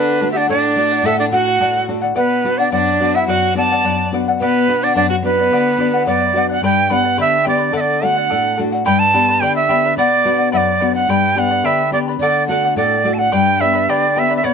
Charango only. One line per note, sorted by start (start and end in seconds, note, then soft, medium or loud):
0.00 0.19 A4 medium
0.00 0.20 D5 medium
0.00 0.20 F#5 medium
0.20 0.35 A4 medium
0.20 0.35 D5 medium
0.20 0.33 F#5 medium
0.35 0.48 D5 soft
0.35 0.49 F#5 soft
0.49 0.76 A4 medium
0.49 0.76 D5 medium
0.49 0.77 F#5 medium
0.77 0.91 A4 medium
0.77 0.91 D5 medium
0.77 0.90 F#5 medium
0.91 1.04 D5 soft
0.91 1.05 F#5 soft
1.05 1.31 A4 medium
1.05 1.31 D5 medium
1.05 1.32 F#5 medium
1.32 1.46 A4 medium
1.32 1.46 D5 medium
1.32 1.44 F#5 medium
1.46 1.60 D5 soft
1.46 1.60 F#5 soft
1.61 1.87 A4 medium
1.61 1.88 D5 medium
1.61 1.88 F#5 medium
1.88 2.03 A4 medium
1.88 2.02 D5 medium
1.88 2.00 F#5 medium
2.01 2.14 D5 soft
2.01 2.15 F#5 soft
2.15 2.43 B4 medium
2.15 2.44 D5 medium
2.15 2.44 F#5 medium
2.44 2.58 B4 medium
2.44 2.59 D5 medium
2.44 2.58 F#5 medium
2.59 2.71 D5 soft
2.59 2.71 F#5 soft
2.72 2.99 B4 medium
2.72 3.00 D5 medium
2.72 3.00 F#5 medium
3.01 3.14 B4 medium
3.01 3.15 D5 medium
3.01 3.15 F#5 medium
3.16 3.28 D5 soft
3.16 3.28 F#5 soft
3.29 3.56 B4 medium
3.29 3.57 D5 medium
3.29 3.57 F#5 medium
3.57 3.71 B4 medium
3.57 3.71 D5 medium
3.57 3.70 F#5 medium
3.71 3.84 D5 soft
3.71 3.85 F#5 soft
3.85 4.12 B4 medium
3.85 4.12 D5 medium
3.85 4.13 F#5 medium
4.13 4.26 B4 medium
4.13 4.27 D5 medium
4.13 4.27 F#5 medium
4.28 4.41 D5 soft
4.28 4.41 F#5 soft
4.42 4.68 B4 medium
4.42 4.68 D5 medium
4.42 4.69 F#5 medium
4.69 4.82 B4 medium
4.69 4.82 D5 medium
4.69 4.81 F#5 medium
4.82 4.95 D5 soft
4.82 4.96 F#5 soft
4.96 5.24 B4 medium
4.96 5.24 D5 medium
4.96 5.24 F#5 medium
5.25 5.38 B4 medium
5.25 5.38 D5 medium
5.25 5.37 F#5 medium
5.38 5.52 D5 soft
5.38 5.52 F#5 soft
5.53 5.78 B4 medium
5.53 5.79 D5 medium
5.53 5.79 F#5 medium
5.79 5.93 B4 medium
5.79 5.93 D5 medium
5.79 5.92 F#5 medium
5.94 6.06 D5 soft
5.94 6.07 F#5 medium
6.07 6.34 B4 medium
6.07 6.35 D5 medium
6.07 6.35 F#5 medium
6.36 6.49 B4 medium
6.36 6.49 D5 medium
6.36 6.48 F#5 medium
6.49 6.63 D5 soft
6.49 6.63 F#5 medium
6.63 6.91 G4 medium
6.63 6.89 B4 medium
6.63 6.89 D5 medium
6.63 6.89 G5 medium
6.63 6.89 B5 medium
6.90 7.04 B4 medium
6.90 7.03 D5 medium
6.90 7.04 G5 medium
6.90 7.03 B5 medium
7.04 7.17 B4 soft
7.04 7.17 D5 soft
7.04 7.17 B5 soft
7.18 7.46 G4 medium
7.18 7.44 B4 medium
7.18 7.44 D5 medium
7.18 7.43 G5 medium
7.18 7.45 B5 medium
7.44 7.58 B4 medium
7.44 7.58 D5 medium
7.44 7.59 G5 medium
7.44 7.57 B5 medium
7.58 7.74 B4 soft
7.58 7.72 D5 soft
7.58 7.73 B5 soft
7.72 8.00 A4 medium
7.72 8.00 D5 medium
7.72 8.02 F#5 medium
8.01 8.16 A4 medium
8.01 8.16 D5 medium
8.01 8.15 F#5 medium
8.16 8.29 D5 soft
8.16 8.30 F#5 medium
8.30 8.56 A4 medium
8.30 8.56 D5 medium
8.30 8.57 F#5 medium
8.57 8.72 A4 medium
8.57 8.72 D5 medium
8.57 8.71 F#5 medium
8.72 8.85 D5 soft
8.72 8.85 F#5 medium
8.85 9.14 G4 medium
8.85 9.13 B4 medium
8.85 9.13 D5 medium
8.85 9.12 G5 medium
8.85 9.13 B5 medium
9.13 9.28 B4 medium
9.13 9.28 D5 medium
9.13 9.28 G5 medium
9.13 9.27 B5 medium
9.29 9.41 B4 soft
9.29 9.41 D5 soft
9.29 9.41 B5 soft
9.41 9.69 G4 medium
9.41 9.68 B4 medium
9.41 9.69 D5 medium
9.41 9.68 G5 medium
9.41 9.69 B5 medium
9.69 9.83 B4 medium
9.69 9.83 D5 medium
9.69 9.83 G5 medium
9.69 9.83 B5 medium
9.84 9.97 B4 soft
9.84 9.97 D5 soft
9.84 9.98 B5 soft
9.98 10.24 B4 medium
9.98 10.25 D5 medium
9.98 10.25 F#5 medium
10.25 10.39 B4 medium
10.25 10.38 D5 medium
10.25 10.37 F#5 medium
10.38 10.51 D5 soft
10.38 10.52 F#5 soft
10.52 10.79 B4 medium
10.52 10.80 D5 medium
10.52 10.81 F#5 medium
10.80 10.95 B4 medium
10.80 10.95 D5 medium
10.80 10.94 F#5 medium
10.95 11.08 D5 soft
10.95 11.09 F#5 soft
11.09 11.37 G4 medium
11.09 11.35 B4 medium
11.09 11.36 D5 medium
11.09 11.35 G5 medium
11.09 11.37 B5 medium
11.36 11.51 B4 medium
11.36 11.50 D5 medium
11.36 11.51 G5 medium
11.36 11.49 B5 medium
11.51 11.64 B4 soft
11.51 11.64 D5 soft
11.51 11.64 B5 soft
11.64 11.93 G4 medium
11.64 11.93 B4 medium
11.64 11.93 D5 medium
11.64 11.92 G5 medium
11.64 11.93 B5 medium
11.93 12.07 B4 medium
11.93 12.08 D5 medium
11.93 12.07 G5 medium
11.93 12.07 B5 medium
12.08 12.22 B4 soft
12.08 12.21 D5 soft
12.08 12.21 B5 soft
12.22 12.48 A4 medium
12.22 12.50 D5 medium
12.22 12.50 F#5 medium
12.50 12.63 A4 medium
12.50 12.64 D5 medium
12.50 12.63 F#5 medium
12.64 12.76 D5 soft
12.64 12.77 F#5 soft
12.77 13.03 A4 medium
12.77 13.04 D5 medium
12.77 13.05 F#5 medium
13.04 13.18 A4 medium
13.04 13.18 D5 medium
13.04 13.17 F#5 medium
13.18 13.31 D5 soft
13.18 13.31 F#5 medium
13.32 13.60 G4 medium
13.32 13.59 B4 medium
13.32 13.59 D5 medium
13.32 13.58 G5 medium
13.32 13.60 B5 medium
13.59 13.74 B4 medium
13.59 13.73 D5 medium
13.59 13.74 G5 medium
13.59 13.72 B5 medium
13.73 13.88 B4 soft
13.73 13.89 D5 soft
13.73 13.88 B5 soft
13.89 14.17 G4 medium
13.89 14.15 B4 medium
13.89 14.16 D5 medium
13.89 14.15 G5 medium
13.89 14.16 B5 medium
14.16 14.30 B4 medium
14.16 14.29 D5 medium
14.16 14.30 G5 medium
14.16 14.28 B5 medium
14.29 14.42 B4 soft
14.29 14.42 D5 medium
14.29 14.44 B5 soft
14.43 14.54 B4 medium
14.43 14.54 D5 medium
14.43 14.54 F#5 medium